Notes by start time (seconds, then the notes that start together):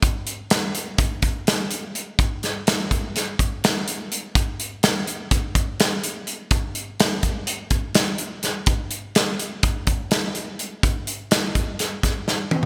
0.02 kick, closed hi-hat
0.27 closed hi-hat
0.50 snare, closed hi-hat
0.75 closed hi-hat
0.98 kick, closed hi-hat
1.22 kick, closed hi-hat
1.47 snare, closed hi-hat
1.71 closed hi-hat
1.95 closed hi-hat
2.19 kick, closed hi-hat
2.43 snare, closed hi-hat
2.67 snare, closed hi-hat
2.91 kick, closed hi-hat
3.16 snare, closed hi-hat
3.39 kick, closed hi-hat
3.64 snare, closed hi-hat
3.88 closed hi-hat
4.12 closed hi-hat
4.35 kick, closed hi-hat
4.60 closed hi-hat
4.83 snare, closed hi-hat
5.07 closed hi-hat
5.31 kick, closed hi-hat
5.55 kick, closed hi-hat
5.80 snare, closed hi-hat
6.04 closed hi-hat
6.27 closed hi-hat
6.51 kick, closed hi-hat
6.75 closed hi-hat
7.00 snare, closed hi-hat
7.23 kick, closed hi-hat
7.47 closed hi-hat
7.71 kick, closed hi-hat
7.95 snare, closed hi-hat
8.18 closed hi-hat
8.43 snare, closed hi-hat
8.66 kick, closed hi-hat
8.91 closed hi-hat
9.15 snare, closed hi-hat
9.39 closed hi-hat
9.63 kick, closed hi-hat
9.87 kick, closed hi-hat
10.11 snare, closed hi-hat
10.35 closed hi-hat
10.59 closed hi-hat
10.83 kick, closed hi-hat
11.07 closed hi-hat
11.31 snare, closed hi-hat
11.55 kick, closed hi-hat
11.79 snare, closed hi-hat
12.03 kick, snare, closed hi-hat
12.28 snare
12.51 high tom